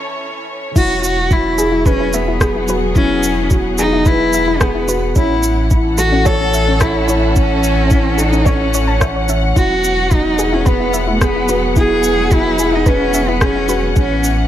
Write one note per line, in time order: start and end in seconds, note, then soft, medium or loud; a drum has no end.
0.00 0.76 E3 medium
0.00 2.05 C#4 medium
0.00 0.76 E4 loud
0.00 0.75 A4 medium
0.00 0.78 A4 medium
0.00 1.96 C#5 medium
0.76 5.13 E1 medium
0.76 5.16 F#3 medium
0.76 0.91 E4 medium
0.76 0.85 E4 medium
0.76 1.02 F#4 loud
0.76 kick loud
0.76 crash loud
0.76 shaker soft
1.04 1.33 F#4 loud
1.04 shaker medium
1.29 6.93 B3 medium
1.29 1.89 E4 loud
1.29 1.57 F#4 medium
1.29 kick loud
1.29 shaker soft
1.58 1.84 G#4 medium
1.58 1.68 G#4 medium
1.58 shaker medium
1.72 1.85 E4 loud
1.86 2.16 C#4 loud
1.86 5.17 G#4 medium
1.86 2.01 B4 medium
1.86 1.95 B4 loud
1.86 kick loud
1.86 shaker soft
2.00 2.09 E4 medium
2.13 2.69 B3 medium
2.13 2.23 E5 medium
2.13 shaker medium
2.28 2.37 E4 loud
2.41 2.67 G#4 medium
2.41 2.51 G#4 medium
2.41 kick loud
2.41 cross-stick medium
2.41 shaker soft
2.51 14.48 F#5 medium
2.56 2.68 E4 medium
2.68 2.95 F#4 medium
2.68 2.79 B4 loud
2.68 shaker medium
2.95 3.47 C#4 loud
2.95 3.12 E4 medium
2.95 3.06 E4 medium
2.95 kick loud
2.95 shaker soft
3.23 shaker medium
3.50 3.77 F#4 medium
3.50 kick loud
3.50 shaker soft
3.78 4.09 D#4 loud
3.78 4.05 G#4 medium
3.78 3.88 G#4 loud
3.78 shaker medium
3.93 4.06 E4 loud
4.06 4.62 E4 loud
4.06 4.22 B4 loud
4.06 4.16 B4 loud
4.06 kick loud
4.06 shaker soft
4.21 4.30 E4 medium
4.33 4.43 E5 medium
4.33 shaker medium
4.48 4.57 E4 loud
4.60 5.02 B3 loud
4.60 4.87 G#4 medium
4.60 4.71 G#4 medium
4.60 kick loud
4.60 cross-stick medium
4.60 shaker soft
4.75 4.88 E4 medium
4.88 5.14 F#4 medium
4.88 4.98 B4 loud
4.88 shaker medium
5.16 9.53 A1 medium
5.16 9.56 E3 medium
5.16 5.26 C#4 medium
5.16 5.32 C#4 medium
5.16 5.67 E4 loud
5.16 kick loud
5.16 shaker soft
5.40 11.09 C#4 medium
5.40 shaker medium
5.70 5.97 E4 medium
5.70 kick loud
5.70 shaker soft
5.79 9.56 A4 medium
5.98 6.27 F#4 loud
5.98 6.24 A4 medium
5.98 6.08 A4 medium
5.98 shaker medium
6.12 6.25 C#4 loud
6.25 6.83 A4 loud
6.25 6.41 C#5 loud
6.25 6.36 C#5 loud
6.25 kick loud
6.25 shaker soft
6.41 6.50 C#4 medium
6.54 6.63 E5 medium
6.54 shaker medium
6.68 6.77 C#4 loud
6.80 7.23 E4 loud
6.80 7.07 A4 medium
6.80 6.91 A4 medium
6.80 kick loud
6.80 cross-stick medium
6.80 shaker soft
6.96 7.08 C#4 medium
7.08 7.34 E4 medium
7.08 7.19 C#5 loud
7.08 shaker medium
7.35 7.51 C#4 medium
7.35 7.46 C#4 medium
7.35 8.21 C#4 medium
7.35 kick loud
7.35 shaker soft
7.63 shaker medium
7.90 8.17 E4 medium
7.90 kick loud
7.90 shaker soft
8.18 8.49 D#4 loud
8.18 8.44 A4 medium
8.18 8.28 A4 loud
8.18 shaker medium
8.33 8.46 C#4 loud
8.33 shaker soft
8.45 9.29 C#4 medium
8.45 8.61 C#5 medium
8.45 8.56 C#5 loud
8.45 kick loud
8.45 shaker soft
8.61 8.70 C#4 medium
8.74 8.87 C#5 medium
8.74 shaker medium
8.88 8.93 A5 loud
9.01 9.17 C#5 medium
9.01 9.07 E5 medium
9.01 kick loud
9.01 cross-stick medium
9.01 shaker soft
9.16 9.21 C#5 medium
9.28 9.54 C#4 medium
9.28 9.39 E5 medium
9.28 shaker medium
9.56 13.94 E1 medium
9.56 13.97 F#3 medium
9.56 9.72 E4 medium
9.56 9.66 E4 medium
9.56 10.14 F#4 loud
9.56 kick loud
9.56 shaker soft
9.71 14.48 B3 medium
9.84 shaker medium
10.11 10.55 D#4 loud
10.11 10.37 F#4 medium
10.11 kick loud
10.11 shaker soft
10.39 10.65 G#4 medium
10.39 10.48 G#4 medium
10.39 shaker medium
10.52 10.70 C#4 loud
10.52 10.66 E4 loud
10.66 11.09 B3 loud
10.66 10.76 B4 loud
10.66 10.82 B4 medium
10.66 kick loud
10.66 shaker soft
10.80 10.90 E4 medium
10.93 13.97 G#4 medium
10.93 11.03 E5 medium
10.93 shaker medium
11.07 11.24 A3 medium
11.07 11.17 E4 loud
11.21 11.63 B3 loud
11.21 11.48 G#4 medium
11.21 11.31 G#4 medium
11.21 kick loud
11.21 cross-stick medium
11.21 shaker soft
11.36 11.49 E4 medium
11.49 11.75 F#4 medium
11.49 11.59 B4 loud
11.49 shaker medium
11.76 11.86 E4 medium
11.76 11.92 E4 medium
11.76 12.35 G#4 loud
11.76 kick loud
11.76 shaker soft
12.03 shaker medium
12.31 12.76 E4 loud
12.31 12.58 F#4 medium
12.31 kick loud
12.31 shaker soft
12.58 12.85 G#4 medium
12.58 12.69 G#4 medium
12.58 shaker medium
12.73 12.90 D#4 loud
12.73 12.86 E4 loud
12.86 13.31 C#4 loud
12.86 13.02 B4 loud
12.86 12.96 B4 loud
12.86 kick loud
12.86 shaker soft
13.00 13.10 E4 medium
13.14 13.24 E5 medium
13.14 shaker medium
13.28 13.45 B3 medium
13.28 13.38 E4 loud
13.41 13.84 C#4 loud
13.41 13.67 G#4 medium
13.41 13.51 G#4 medium
13.41 kick loud
13.41 cross-stick medium
13.41 shaker soft
13.56 13.69 E4 medium
13.68 13.95 F#4 medium
13.68 13.79 B4 loud
13.68 shaker medium
13.96 14.48 A1 medium
13.96 14.48 E3 medium
13.96 14.12 C#4 medium
13.96 14.06 C#4 medium
13.96 14.48 C#4 medium
13.96 kick loud
13.96 shaker soft
14.24 shaker medium
14.44 14.48 C#4 medium